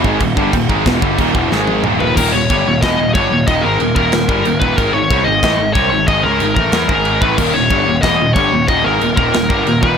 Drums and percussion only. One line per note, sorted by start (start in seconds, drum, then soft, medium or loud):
0.04 kick loud
0.20 kick loud
0.20 crash medium
0.37 kick loud
0.53 kick medium
0.53 crash medium
0.70 kick loud
0.86 kick loud
0.86 snare loud
0.86 crash medium
1.02 kick loud
1.19 kick loud
1.19 crash medium
1.35 kick loud
1.52 snare medium
1.67 high tom medium
1.84 mid tom medium
2.00 floor tom medium
2.17 kick loud
2.17 crash loud
2.17 china medium
2.50 kick loud
2.50 china medium
2.82 kick loud
2.82 snare loud
2.82 china medium
3.15 kick loud
3.15 china medium
3.48 kick loud
3.48 china medium
3.80 china medium
3.96 kick loud
4.12 snare loud
4.12 china medium
4.29 kick loud
4.45 china medium
4.62 kick loud
4.78 kick loud
4.78 china medium
5.11 kick loud
5.11 china medium
5.43 kick loud
5.43 snare loud
5.43 china medium
5.75 kick loud
5.75 china medium
6.08 kick loud
6.08 china medium
6.40 china medium
6.57 kick loud
6.72 snare loud
6.72 china medium
6.89 kick loud
7.05 china medium
7.22 kick loud
7.38 kick loud
7.38 crash loud
7.38 china medium
7.71 kick loud
7.71 china medium
8.03 kick loud
8.03 snare loud
8.03 china medium
8.36 kick loud
8.36 china medium
8.68 kick loud
8.68 china medium
9.01 china medium
9.17 kick loud
9.34 snare loud
9.34 china medium
9.50 kick loud
9.67 china medium
9.83 kick loud